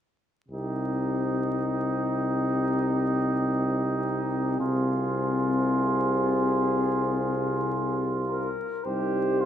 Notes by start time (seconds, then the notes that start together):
0.49 C2 C3 C4 D#4 G4
4.58 C2 C3 C4 F4 G#4
8.28 A#4
8.84 C2 G3 D#4 G4 C5
9.41 F4